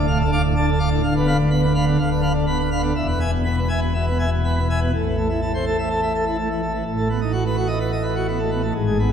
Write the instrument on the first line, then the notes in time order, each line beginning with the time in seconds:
pipe organ
Already playing: D1 D2
0.08 A2 F5
0.20 A4
0.24 D4
0.32 F5 D6
0.43 A2
0.56 D4 A5
0.69 A4
0.79 F5 D6
0.89 D4
0.93 A2
1.03 D1 D2 F5
1.17 B3 B4
1.27 F5 B5
1.39 D3
1.50 B3 B5
1.62 B4
1.75 F5 B5
1.82 B3
1.88 D3
1.99 D1 D2 F5
2.11 D3 B4
2.22 F5 B5
2.34 D3
2.47 B3 B5
2.59 B4
2.71 F5 B5
2.78 B3
2.82 D3
2.95 E1 E2 E5
3.08 B4
3.12 B3
3.19 E5 G#5
3.33 B2
3.44 B3 B5
3.57 B4
3.68 E5 G#5
3.79 B2 B3
3.95 B2 E5
4.07 B4
4.11 B3
4.19 E5 G#5
4.31 B2
4.45 B3 B5
4.57 B4
4.70 E5 G#5
4.79 B2 B3
4.94 A1 A2
5.06 E3
5.17 A3
5.30 E4
5.41 A4
5.54 C5
5.66 A4
5.79 E5
5.90 A4
6.03 E5
6.14 A4
6.26 E4
6.38 A3
6.51 E3
6.62 A3
6.74 E3
6.85 A1 A2
6.98 A3
7.09 B3
7.21 D#4
7.32 F#4
7.46 B4
7.56 F#4
7.67 D#5
7.80 B4
7.92 D#5
8.03 B4
8.15 F#4
8.28 B3
8.39 A3
8.51 B3
8.62 A3
8.74 G#1 G#2
8.86 G#3
8.99 B3